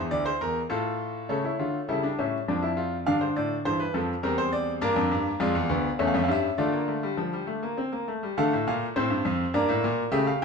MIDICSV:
0, 0, Header, 1, 2, 480
1, 0, Start_track
1, 0, Tempo, 588813
1, 1053, Time_signature, 3, 2, 24, 8
1, 8516, End_track
2, 0, Start_track
2, 0, Title_t, "Grand piano"
2, 0, Program_c, 0, 0
2, 0, Note_on_c, 0, 40, 68
2, 0, Note_on_c, 0, 64, 78
2, 90, Note_on_c, 0, 74, 82
2, 91, Note_off_c, 0, 40, 0
2, 92, Note_on_c, 0, 38, 67
2, 206, Note_off_c, 0, 74, 0
2, 209, Note_on_c, 0, 72, 83
2, 240, Note_off_c, 0, 38, 0
2, 326, Note_off_c, 0, 72, 0
2, 335, Note_on_c, 0, 40, 60
2, 336, Note_on_c, 0, 70, 81
2, 482, Note_off_c, 0, 40, 0
2, 483, Note_off_c, 0, 70, 0
2, 542, Note_off_c, 0, 64, 0
2, 567, Note_on_c, 0, 45, 68
2, 568, Note_on_c, 0, 69, 81
2, 572, Note_on_c, 0, 65, 72
2, 1037, Note_off_c, 0, 45, 0
2, 1038, Note_off_c, 0, 69, 0
2, 1040, Note_off_c, 0, 65, 0
2, 1052, Note_on_c, 0, 73, 62
2, 1053, Note_on_c, 0, 49, 64
2, 1054, Note_on_c, 0, 57, 60
2, 1055, Note_on_c, 0, 69, 74
2, 1172, Note_off_c, 0, 69, 0
2, 1178, Note_on_c, 0, 64, 63
2, 1204, Note_off_c, 0, 49, 0
2, 1294, Note_off_c, 0, 64, 0
2, 1299, Note_on_c, 0, 50, 55
2, 1300, Note_on_c, 0, 65, 61
2, 1448, Note_off_c, 0, 50, 0
2, 1449, Note_off_c, 0, 65, 0
2, 1524, Note_off_c, 0, 73, 0
2, 1525, Note_off_c, 0, 57, 0
2, 1536, Note_on_c, 0, 55, 64
2, 1538, Note_on_c, 0, 49, 60
2, 1538, Note_on_c, 0, 64, 70
2, 1539, Note_on_c, 0, 69, 62
2, 1655, Note_off_c, 0, 64, 0
2, 1658, Note_on_c, 0, 62, 65
2, 1688, Note_off_c, 0, 49, 0
2, 1689, Note_off_c, 0, 69, 0
2, 1775, Note_off_c, 0, 62, 0
2, 1782, Note_on_c, 0, 61, 64
2, 1783, Note_on_c, 0, 45, 59
2, 1784, Note_on_c, 0, 76, 58
2, 1931, Note_off_c, 0, 45, 0
2, 1931, Note_off_c, 0, 61, 0
2, 1932, Note_off_c, 0, 76, 0
2, 2004, Note_off_c, 0, 55, 0
2, 2024, Note_on_c, 0, 53, 60
2, 2024, Note_on_c, 0, 74, 56
2, 2025, Note_on_c, 0, 41, 57
2, 2026, Note_on_c, 0, 62, 67
2, 2139, Note_off_c, 0, 62, 0
2, 2139, Note_on_c, 0, 64, 71
2, 2256, Note_off_c, 0, 64, 0
2, 2257, Note_on_c, 0, 65, 72
2, 2407, Note_off_c, 0, 65, 0
2, 2487, Note_off_c, 0, 53, 0
2, 2487, Note_off_c, 0, 74, 0
2, 2488, Note_off_c, 0, 41, 0
2, 2498, Note_on_c, 0, 43, 65
2, 2498, Note_on_c, 0, 77, 79
2, 2499, Note_on_c, 0, 62, 68
2, 2501, Note_on_c, 0, 50, 66
2, 2615, Note_off_c, 0, 77, 0
2, 2617, Note_on_c, 0, 72, 61
2, 2647, Note_off_c, 0, 43, 0
2, 2733, Note_off_c, 0, 72, 0
2, 2742, Note_on_c, 0, 74, 70
2, 2743, Note_on_c, 0, 45, 60
2, 2888, Note_off_c, 0, 45, 0
2, 2888, Note_off_c, 0, 74, 0
2, 2962, Note_off_c, 0, 50, 0
2, 2978, Note_on_c, 0, 43, 66
2, 2978, Note_on_c, 0, 52, 64
2, 2978, Note_on_c, 0, 72, 79
2, 3092, Note_off_c, 0, 72, 0
2, 3095, Note_on_c, 0, 71, 78
2, 3124, Note_off_c, 0, 52, 0
2, 3125, Note_off_c, 0, 43, 0
2, 3210, Note_off_c, 0, 71, 0
2, 3213, Note_on_c, 0, 41, 69
2, 3213, Note_on_c, 0, 53, 62
2, 3215, Note_on_c, 0, 69, 68
2, 3360, Note_off_c, 0, 41, 0
2, 3360, Note_off_c, 0, 53, 0
2, 3361, Note_off_c, 0, 69, 0
2, 3422, Note_off_c, 0, 62, 0
2, 3450, Note_on_c, 0, 70, 83
2, 3451, Note_on_c, 0, 40, 67
2, 3451, Note_on_c, 0, 55, 73
2, 3452, Note_on_c, 0, 60, 68
2, 3566, Note_off_c, 0, 70, 0
2, 3570, Note_on_c, 0, 72, 86
2, 3685, Note_off_c, 0, 72, 0
2, 3689, Note_on_c, 0, 74, 84
2, 3836, Note_off_c, 0, 74, 0
2, 3912, Note_off_c, 0, 40, 0
2, 3912, Note_off_c, 0, 55, 0
2, 3913, Note_off_c, 0, 60, 0
2, 3924, Note_on_c, 0, 58, 81
2, 3926, Note_on_c, 0, 62, 87
2, 3927, Note_on_c, 0, 43, 83
2, 3928, Note_on_c, 0, 70, 85
2, 4042, Note_off_c, 0, 43, 0
2, 4044, Note_on_c, 0, 41, 78
2, 4160, Note_off_c, 0, 41, 0
2, 4170, Note_on_c, 0, 43, 83
2, 4316, Note_off_c, 0, 43, 0
2, 4387, Note_off_c, 0, 58, 0
2, 4388, Note_off_c, 0, 62, 0
2, 4389, Note_off_c, 0, 70, 0
2, 4402, Note_on_c, 0, 41, 84
2, 4402, Note_on_c, 0, 65, 76
2, 4403, Note_on_c, 0, 56, 81
2, 4406, Note_on_c, 0, 74, 74
2, 4518, Note_off_c, 0, 41, 0
2, 4523, Note_on_c, 0, 40, 90
2, 4550, Note_off_c, 0, 56, 0
2, 4638, Note_off_c, 0, 40, 0
2, 4641, Note_on_c, 0, 38, 86
2, 4642, Note_on_c, 0, 59, 83
2, 4790, Note_off_c, 0, 38, 0
2, 4790, Note_off_c, 0, 59, 0
2, 4866, Note_off_c, 0, 65, 0
2, 4869, Note_off_c, 0, 74, 0
2, 4884, Note_on_c, 0, 57, 75
2, 4884, Note_on_c, 0, 61, 80
2, 4885, Note_on_c, 0, 76, 65
2, 4886, Note_on_c, 0, 40, 82
2, 4949, Note_off_c, 0, 76, 0
2, 4949, Note_on_c, 0, 77, 66
2, 5000, Note_off_c, 0, 40, 0
2, 5007, Note_on_c, 0, 41, 84
2, 5014, Note_off_c, 0, 77, 0
2, 5020, Note_on_c, 0, 76, 64
2, 5033, Note_off_c, 0, 57, 0
2, 5082, Note_on_c, 0, 77, 63
2, 5083, Note_off_c, 0, 76, 0
2, 5121, Note_off_c, 0, 41, 0
2, 5122, Note_on_c, 0, 43, 75
2, 5122, Note_on_c, 0, 55, 79
2, 5147, Note_off_c, 0, 77, 0
2, 5147, Note_on_c, 0, 76, 77
2, 5273, Note_off_c, 0, 43, 0
2, 5273, Note_off_c, 0, 55, 0
2, 5352, Note_off_c, 0, 61, 0
2, 5360, Note_off_c, 0, 76, 0
2, 5364, Note_on_c, 0, 50, 76
2, 5364, Note_on_c, 0, 74, 68
2, 5367, Note_on_c, 0, 57, 73
2, 5368, Note_on_c, 0, 65, 72
2, 5481, Note_on_c, 0, 58, 63
2, 5484, Note_off_c, 0, 57, 0
2, 5602, Note_off_c, 0, 58, 0
2, 5607, Note_on_c, 0, 57, 61
2, 5726, Note_off_c, 0, 57, 0
2, 5732, Note_on_c, 0, 55, 67
2, 5849, Note_off_c, 0, 55, 0
2, 5849, Note_on_c, 0, 53, 66
2, 5967, Note_off_c, 0, 53, 0
2, 5976, Note_on_c, 0, 55, 62
2, 6091, Note_on_c, 0, 57, 63
2, 6092, Note_off_c, 0, 55, 0
2, 6209, Note_off_c, 0, 57, 0
2, 6217, Note_on_c, 0, 58, 64
2, 6333, Note_off_c, 0, 58, 0
2, 6338, Note_on_c, 0, 60, 64
2, 6454, Note_off_c, 0, 60, 0
2, 6459, Note_on_c, 0, 58, 61
2, 6544, Note_off_c, 0, 50, 0
2, 6544, Note_off_c, 0, 74, 0
2, 6546, Note_off_c, 0, 65, 0
2, 6575, Note_off_c, 0, 58, 0
2, 6586, Note_on_c, 0, 57, 65
2, 6699, Note_off_c, 0, 57, 0
2, 6709, Note_on_c, 0, 55, 64
2, 6821, Note_off_c, 0, 55, 0
2, 6827, Note_on_c, 0, 69, 81
2, 6829, Note_on_c, 0, 50, 94
2, 6829, Note_on_c, 0, 57, 77
2, 6829, Note_on_c, 0, 77, 74
2, 6941, Note_off_c, 0, 50, 0
2, 6953, Note_on_c, 0, 45, 74
2, 6975, Note_off_c, 0, 77, 0
2, 7063, Note_off_c, 0, 45, 0
2, 7071, Note_on_c, 0, 46, 83
2, 7072, Note_on_c, 0, 77, 70
2, 7216, Note_off_c, 0, 46, 0
2, 7217, Note_off_c, 0, 77, 0
2, 7290, Note_off_c, 0, 57, 0
2, 7304, Note_on_c, 0, 72, 69
2, 7305, Note_on_c, 0, 60, 74
2, 7306, Note_on_c, 0, 45, 87
2, 7418, Note_off_c, 0, 45, 0
2, 7418, Note_on_c, 0, 43, 78
2, 7534, Note_off_c, 0, 43, 0
2, 7542, Note_on_c, 0, 41, 78
2, 7688, Note_off_c, 0, 41, 0
2, 7751, Note_off_c, 0, 69, 0
2, 7764, Note_off_c, 0, 60, 0
2, 7764, Note_off_c, 0, 72, 0
2, 7777, Note_on_c, 0, 43, 86
2, 7778, Note_on_c, 0, 58, 71
2, 7778, Note_on_c, 0, 70, 76
2, 7778, Note_on_c, 0, 74, 72
2, 7891, Note_off_c, 0, 43, 0
2, 7898, Note_on_c, 0, 45, 87
2, 8012, Note_off_c, 0, 45, 0
2, 8021, Note_on_c, 0, 46, 88
2, 8166, Note_off_c, 0, 46, 0
2, 8237, Note_off_c, 0, 70, 0
2, 8238, Note_off_c, 0, 58, 0
2, 8238, Note_off_c, 0, 74, 0
2, 8246, Note_on_c, 0, 49, 99
2, 8247, Note_on_c, 0, 67, 82
2, 8247, Note_on_c, 0, 76, 78
2, 8248, Note_on_c, 0, 57, 75
2, 8364, Note_off_c, 0, 76, 0
2, 8373, Note_on_c, 0, 77, 73
2, 8394, Note_off_c, 0, 49, 0
2, 8396, Note_off_c, 0, 57, 0
2, 8486, Note_off_c, 0, 77, 0
2, 8516, Note_off_c, 0, 67, 0
2, 8516, End_track
0, 0, End_of_file